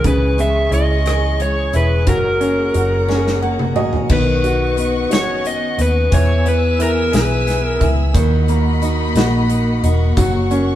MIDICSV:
0, 0, Header, 1, 7, 480
1, 0, Start_track
1, 0, Key_signature, 5, "major"
1, 0, Tempo, 674916
1, 33, Time_signature, 6, 3, 24, 8
1, 7647, End_track
2, 0, Start_track
2, 0, Title_t, "String section"
2, 0, Program_c, 0, 48
2, 0, Note_on_c, 0, 68, 64
2, 23, Note_on_c, 0, 85, 72
2, 24, Note_on_c, 0, 73, 61
2, 26, Note_on_c, 0, 64, 59
2, 1455, Note_off_c, 0, 85, 0
2, 1457, Note_off_c, 0, 64, 0
2, 1467, Note_on_c, 0, 82, 68
2, 1469, Note_on_c, 0, 78, 57
2, 2883, Note_off_c, 0, 68, 0
2, 2883, Note_off_c, 0, 73, 0
2, 2897, Note_off_c, 0, 82, 0
2, 2898, Note_off_c, 0, 78, 0
2, 2910, Note_on_c, 0, 78, 62
2, 2911, Note_on_c, 0, 59, 64
2, 2912, Note_on_c, 0, 85, 74
2, 2913, Note_on_c, 0, 75, 63
2, 4338, Note_off_c, 0, 78, 0
2, 4339, Note_off_c, 0, 85, 0
2, 4340, Note_off_c, 0, 75, 0
2, 4362, Note_on_c, 0, 76, 61
2, 4364, Note_on_c, 0, 80, 65
2, 4364, Note_on_c, 0, 88, 78
2, 5764, Note_off_c, 0, 59, 0
2, 5784, Note_off_c, 0, 76, 0
2, 5785, Note_off_c, 0, 80, 0
2, 5785, Note_off_c, 0, 88, 0
2, 5798, Note_on_c, 0, 58, 73
2, 5798, Note_on_c, 0, 83, 88
2, 5799, Note_on_c, 0, 75, 73
2, 5800, Note_on_c, 0, 78, 73
2, 7221, Note_off_c, 0, 75, 0
2, 7221, Note_off_c, 0, 83, 0
2, 7236, Note_on_c, 0, 73, 62
2, 7238, Note_on_c, 0, 85, 74
2, 7647, Note_off_c, 0, 58, 0
2, 7647, Note_off_c, 0, 73, 0
2, 7647, Note_off_c, 0, 78, 0
2, 7647, Note_off_c, 0, 85, 0
2, 7647, End_track
3, 0, Start_track
3, 0, Title_t, "Electric slide guitar"
3, 0, Program_c, 1, 29
3, 50, Note_on_c, 1, 71, 89
3, 288, Note_on_c, 1, 76, 87
3, 289, Note_off_c, 1, 71, 0
3, 522, Note_off_c, 1, 76, 0
3, 525, Note_on_c, 1, 75, 99
3, 1010, Note_on_c, 1, 73, 82
3, 1014, Note_off_c, 1, 75, 0
3, 1249, Note_off_c, 1, 73, 0
3, 1251, Note_on_c, 1, 71, 79
3, 1486, Note_off_c, 1, 71, 0
3, 1489, Note_on_c, 1, 70, 76
3, 2414, Note_off_c, 1, 70, 0
3, 2936, Note_on_c, 1, 71, 87
3, 3647, Note_off_c, 1, 71, 0
3, 3649, Note_on_c, 1, 73, 88
3, 3889, Note_off_c, 1, 73, 0
3, 3889, Note_on_c, 1, 75, 100
3, 4129, Note_off_c, 1, 75, 0
3, 4134, Note_on_c, 1, 71, 84
3, 4366, Note_on_c, 1, 73, 92
3, 4372, Note_off_c, 1, 71, 0
3, 4608, Note_off_c, 1, 73, 0
3, 4610, Note_on_c, 1, 71, 89
3, 4849, Note_off_c, 1, 71, 0
3, 4851, Note_on_c, 1, 70, 84
3, 5090, Note_off_c, 1, 70, 0
3, 5095, Note_on_c, 1, 71, 73
3, 5444, Note_off_c, 1, 71, 0
3, 5444, Note_on_c, 1, 70, 73
3, 5597, Note_off_c, 1, 70, 0
3, 7647, End_track
4, 0, Start_track
4, 0, Title_t, "Steel-string acoustic guitar"
4, 0, Program_c, 2, 25
4, 0, Note_on_c, 2, 60, 54
4, 0, Note_on_c, 2, 63, 51
4, 0, Note_on_c, 2, 68, 57
4, 31, Note_on_c, 2, 52, 76
4, 79, Note_off_c, 2, 63, 0
4, 80, Note_off_c, 2, 60, 0
4, 271, Note_on_c, 2, 56, 50
4, 510, Note_on_c, 2, 61, 48
4, 750, Note_off_c, 2, 68, 0
4, 753, Note_on_c, 2, 68, 64
4, 991, Note_off_c, 2, 56, 0
4, 994, Note_on_c, 2, 56, 53
4, 1228, Note_off_c, 2, 68, 0
4, 1231, Note_on_c, 2, 68, 53
4, 1467, Note_off_c, 2, 52, 0
4, 1470, Note_on_c, 2, 54, 77
4, 1521, Note_off_c, 2, 68, 0
4, 1522, Note_off_c, 2, 56, 0
4, 1713, Note_on_c, 2, 58, 53
4, 1950, Note_off_c, 2, 61, 0
4, 1953, Note_on_c, 2, 61, 52
4, 2194, Note_on_c, 2, 68, 63
4, 2427, Note_off_c, 2, 58, 0
4, 2435, Note_on_c, 2, 58, 54
4, 2663, Note_off_c, 2, 68, 0
4, 2671, Note_on_c, 2, 68, 55
4, 2911, Note_off_c, 2, 54, 0
4, 2914, Note_off_c, 2, 68, 0
4, 2914, Note_on_c, 2, 51, 82
4, 2917, Note_on_c, 2, 66, 65
4, 2962, Note_off_c, 2, 61, 0
4, 2963, Note_off_c, 2, 58, 0
4, 3156, Note_on_c, 2, 59, 59
4, 3385, Note_off_c, 2, 66, 0
4, 3393, Note_on_c, 2, 66, 60
4, 3637, Note_on_c, 2, 61, 56
4, 3871, Note_off_c, 2, 59, 0
4, 3874, Note_on_c, 2, 59, 59
4, 4105, Note_off_c, 2, 66, 0
4, 4114, Note_on_c, 2, 66, 59
4, 4349, Note_off_c, 2, 51, 0
4, 4351, Note_on_c, 2, 52, 77
4, 4352, Note_off_c, 2, 66, 0
4, 4355, Note_on_c, 2, 68, 67
4, 4404, Note_off_c, 2, 61, 0
4, 4590, Note_off_c, 2, 59, 0
4, 4593, Note_on_c, 2, 59, 64
4, 4826, Note_off_c, 2, 68, 0
4, 4835, Note_on_c, 2, 68, 63
4, 5074, Note_on_c, 2, 64, 61
4, 5309, Note_off_c, 2, 59, 0
4, 5312, Note_on_c, 2, 59, 63
4, 5545, Note_off_c, 2, 68, 0
4, 5554, Note_on_c, 2, 68, 64
4, 5790, Note_off_c, 2, 52, 0
4, 5793, Note_on_c, 2, 54, 81
4, 5794, Note_off_c, 2, 68, 0
4, 5798, Note_on_c, 2, 66, 68
4, 5841, Note_off_c, 2, 59, 0
4, 5842, Note_off_c, 2, 64, 0
4, 6033, Note_on_c, 2, 58, 61
4, 6268, Note_off_c, 2, 66, 0
4, 6271, Note_on_c, 2, 66, 61
4, 6513, Note_on_c, 2, 63, 67
4, 6749, Note_off_c, 2, 58, 0
4, 6752, Note_on_c, 2, 58, 60
4, 6993, Note_off_c, 2, 66, 0
4, 6996, Note_on_c, 2, 66, 58
4, 7235, Note_off_c, 2, 54, 0
4, 7238, Note_on_c, 2, 54, 81
4, 7240, Note_off_c, 2, 66, 0
4, 7243, Note_on_c, 2, 66, 70
4, 7280, Note_off_c, 2, 58, 0
4, 7281, Note_off_c, 2, 63, 0
4, 7477, Note_on_c, 2, 58, 58
4, 7647, Note_off_c, 2, 54, 0
4, 7647, Note_off_c, 2, 58, 0
4, 7647, Note_off_c, 2, 66, 0
4, 7647, End_track
5, 0, Start_track
5, 0, Title_t, "Upright piano"
5, 0, Program_c, 3, 0
5, 0, Control_c, 3, 64, 127
5, 30, Note_on_c, 3, 49, 64
5, 41, Control_c, 3, 64, 0
5, 184, Control_c, 3, 64, 127
5, 271, Note_on_c, 3, 56, 49
5, 509, Note_on_c, 3, 64, 50
5, 754, Note_on_c, 3, 68, 51
5, 1205, Note_off_c, 3, 56, 0
5, 1223, Note_off_c, 3, 64, 0
5, 1234, Note_on_c, 3, 64, 52
5, 1445, Note_off_c, 3, 49, 0
5, 1453, Note_off_c, 3, 68, 0
5, 1467, Note_off_c, 3, 64, 0
5, 1473, Note_on_c, 3, 54, 64
5, 1485, Control_c, 3, 64, 0
5, 1601, Control_c, 3, 64, 127
5, 1709, Note_on_c, 3, 61, 52
5, 1951, Note_on_c, 3, 66, 48
5, 2185, Note_off_c, 3, 61, 0
5, 2195, Note_on_c, 3, 61, 49
5, 2431, Note_on_c, 3, 78, 66
5, 2656, Note_off_c, 3, 78, 0
5, 2662, Note_off_c, 3, 54, 0
5, 2673, Note_on_c, 3, 54, 53
5, 2673, Note_on_c, 3, 75, 69
5, 2885, Note_off_c, 3, 66, 0
5, 2894, Note_off_c, 3, 61, 0
5, 2897, Note_off_c, 3, 75, 0
5, 2907, Note_off_c, 3, 54, 0
5, 2914, Note_on_c, 3, 59, 61
5, 2925, Control_c, 3, 64, 0
5, 3062, Control_c, 3, 64, 127
5, 3158, Note_on_c, 3, 66, 57
5, 3384, Note_off_c, 3, 59, 0
5, 3395, Note_on_c, 3, 59, 52
5, 3620, Note_off_c, 3, 66, 0
5, 3631, Note_on_c, 3, 66, 52
5, 4102, Note_off_c, 3, 59, 0
5, 4112, Note_on_c, 3, 59, 52
5, 4331, Note_off_c, 3, 66, 0
5, 4347, Note_off_c, 3, 59, 0
5, 4348, Note_on_c, 3, 52, 67
5, 4364, Control_c, 3, 64, 0
5, 4499, Control_c, 3, 64, 127
5, 4592, Note_on_c, 3, 59, 59
5, 4828, Note_on_c, 3, 64, 56
5, 5067, Note_on_c, 3, 68, 56
5, 5525, Note_off_c, 3, 59, 0
5, 5537, Note_off_c, 3, 64, 0
5, 5548, Note_on_c, 3, 64, 52
5, 5763, Note_off_c, 3, 52, 0
5, 5769, Note_off_c, 3, 68, 0
5, 5784, Note_off_c, 3, 64, 0
5, 5789, Note_on_c, 3, 51, 73
5, 5804, Control_c, 3, 64, 0
5, 5927, Control_c, 3, 64, 127
5, 6035, Note_on_c, 3, 58, 56
5, 6273, Note_on_c, 3, 63, 53
5, 6518, Note_on_c, 3, 66, 58
5, 6966, Note_off_c, 3, 58, 0
5, 6984, Note_off_c, 3, 63, 0
5, 6995, Note_on_c, 3, 63, 53
5, 7202, Note_off_c, 3, 51, 0
5, 7214, Note_off_c, 3, 66, 0
5, 7227, Note_off_c, 3, 63, 0
5, 7236, Note_on_c, 3, 54, 71
5, 7244, Control_c, 3, 64, 0
5, 7368, Control_c, 3, 64, 127
5, 7474, Note_on_c, 3, 61, 58
5, 7647, Note_off_c, 3, 54, 0
5, 7647, Note_off_c, 3, 61, 0
5, 7647, End_track
6, 0, Start_track
6, 0, Title_t, "Fingered electric bass"
6, 0, Program_c, 4, 33
6, 31, Note_on_c, 4, 37, 76
6, 484, Note_off_c, 4, 37, 0
6, 507, Note_on_c, 4, 37, 86
6, 1202, Note_off_c, 4, 37, 0
6, 1235, Note_on_c, 4, 28, 78
6, 1473, Note_off_c, 4, 28, 0
6, 1473, Note_on_c, 4, 30, 87
6, 1926, Note_off_c, 4, 30, 0
6, 1956, Note_on_c, 4, 30, 84
6, 2677, Note_off_c, 4, 30, 0
6, 2677, Note_on_c, 4, 34, 79
6, 2902, Note_off_c, 4, 34, 0
6, 2915, Note_on_c, 4, 35, 96
6, 3635, Note_off_c, 4, 35, 0
6, 3635, Note_on_c, 4, 30, 91
6, 4087, Note_off_c, 4, 30, 0
6, 4113, Note_on_c, 4, 39, 79
6, 4339, Note_off_c, 4, 39, 0
6, 4356, Note_on_c, 4, 40, 92
6, 5047, Note_off_c, 4, 40, 0
6, 5074, Note_on_c, 4, 35, 84
6, 5526, Note_off_c, 4, 35, 0
6, 5557, Note_on_c, 4, 37, 91
6, 5782, Note_off_c, 4, 37, 0
6, 5794, Note_on_c, 4, 39, 98
6, 6485, Note_off_c, 4, 39, 0
6, 6509, Note_on_c, 4, 34, 86
6, 6963, Note_off_c, 4, 34, 0
6, 6993, Note_on_c, 4, 28, 90
6, 7218, Note_off_c, 4, 28, 0
6, 7233, Note_on_c, 4, 30, 98
6, 7647, Note_off_c, 4, 30, 0
6, 7647, End_track
7, 0, Start_track
7, 0, Title_t, "Drums"
7, 31, Note_on_c, 9, 36, 95
7, 31, Note_on_c, 9, 42, 81
7, 102, Note_off_c, 9, 36, 0
7, 102, Note_off_c, 9, 42, 0
7, 276, Note_on_c, 9, 42, 44
7, 347, Note_off_c, 9, 42, 0
7, 514, Note_on_c, 9, 42, 50
7, 585, Note_off_c, 9, 42, 0
7, 752, Note_on_c, 9, 42, 73
7, 764, Note_on_c, 9, 37, 92
7, 823, Note_off_c, 9, 42, 0
7, 835, Note_off_c, 9, 37, 0
7, 996, Note_on_c, 9, 42, 47
7, 1067, Note_off_c, 9, 42, 0
7, 1234, Note_on_c, 9, 42, 53
7, 1305, Note_off_c, 9, 42, 0
7, 1470, Note_on_c, 9, 42, 83
7, 1473, Note_on_c, 9, 36, 101
7, 1541, Note_off_c, 9, 42, 0
7, 1544, Note_off_c, 9, 36, 0
7, 1713, Note_on_c, 9, 42, 43
7, 1784, Note_off_c, 9, 42, 0
7, 1951, Note_on_c, 9, 42, 54
7, 2022, Note_off_c, 9, 42, 0
7, 2203, Note_on_c, 9, 38, 45
7, 2274, Note_off_c, 9, 38, 0
7, 2325, Note_on_c, 9, 38, 47
7, 2397, Note_off_c, 9, 38, 0
7, 2555, Note_on_c, 9, 47, 71
7, 2626, Note_off_c, 9, 47, 0
7, 2673, Note_on_c, 9, 45, 81
7, 2744, Note_off_c, 9, 45, 0
7, 2793, Note_on_c, 9, 43, 77
7, 2864, Note_off_c, 9, 43, 0
7, 2912, Note_on_c, 9, 49, 86
7, 2915, Note_on_c, 9, 36, 111
7, 2983, Note_off_c, 9, 49, 0
7, 2986, Note_off_c, 9, 36, 0
7, 3158, Note_on_c, 9, 42, 47
7, 3229, Note_off_c, 9, 42, 0
7, 3399, Note_on_c, 9, 42, 61
7, 3470, Note_off_c, 9, 42, 0
7, 3636, Note_on_c, 9, 42, 86
7, 3648, Note_on_c, 9, 38, 112
7, 3707, Note_off_c, 9, 42, 0
7, 3719, Note_off_c, 9, 38, 0
7, 3880, Note_on_c, 9, 42, 52
7, 3952, Note_off_c, 9, 42, 0
7, 4116, Note_on_c, 9, 42, 56
7, 4187, Note_off_c, 9, 42, 0
7, 4355, Note_on_c, 9, 36, 103
7, 4355, Note_on_c, 9, 42, 92
7, 4426, Note_off_c, 9, 36, 0
7, 4426, Note_off_c, 9, 42, 0
7, 4598, Note_on_c, 9, 42, 46
7, 4669, Note_off_c, 9, 42, 0
7, 4836, Note_on_c, 9, 42, 61
7, 4907, Note_off_c, 9, 42, 0
7, 5073, Note_on_c, 9, 42, 85
7, 5085, Note_on_c, 9, 38, 99
7, 5144, Note_off_c, 9, 42, 0
7, 5156, Note_off_c, 9, 38, 0
7, 5318, Note_on_c, 9, 42, 55
7, 5326, Note_on_c, 9, 38, 32
7, 5389, Note_off_c, 9, 42, 0
7, 5397, Note_off_c, 9, 38, 0
7, 5554, Note_on_c, 9, 42, 58
7, 5555, Note_on_c, 9, 36, 82
7, 5625, Note_off_c, 9, 42, 0
7, 5626, Note_off_c, 9, 36, 0
7, 5793, Note_on_c, 9, 36, 108
7, 5793, Note_on_c, 9, 42, 91
7, 5864, Note_off_c, 9, 36, 0
7, 5864, Note_off_c, 9, 42, 0
7, 6036, Note_on_c, 9, 42, 47
7, 6107, Note_off_c, 9, 42, 0
7, 6276, Note_on_c, 9, 42, 55
7, 6347, Note_off_c, 9, 42, 0
7, 6512, Note_on_c, 9, 42, 85
7, 6524, Note_on_c, 9, 38, 112
7, 6583, Note_off_c, 9, 42, 0
7, 6595, Note_off_c, 9, 38, 0
7, 6756, Note_on_c, 9, 42, 48
7, 6827, Note_off_c, 9, 42, 0
7, 6996, Note_on_c, 9, 42, 58
7, 7067, Note_off_c, 9, 42, 0
7, 7232, Note_on_c, 9, 42, 90
7, 7234, Note_on_c, 9, 36, 109
7, 7303, Note_off_c, 9, 42, 0
7, 7305, Note_off_c, 9, 36, 0
7, 7474, Note_on_c, 9, 42, 44
7, 7545, Note_off_c, 9, 42, 0
7, 7647, End_track
0, 0, End_of_file